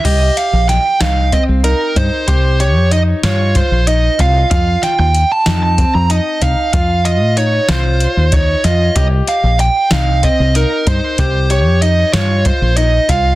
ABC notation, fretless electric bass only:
X:1
M:7/8
L:1/16
Q:1/4=94
K:Cphr
V:1 name="Fretless electric bass" clef=bass
C,,2 z B,,,2 z C,,3 C,,2 z G,, z | C,,3 F,,3 G,,3 B,,,3 C,,2 | F,,2 z E,,2 z F,,3 F,,2 z C,, z | F,,3 =A,,3 C,,3 E,,3 F,,2 |
C,,2 z B,,,2 z C,,3 C,,2 z G,, z | C,,3 F,,3 G,,3 B,,,3 C,,2 |]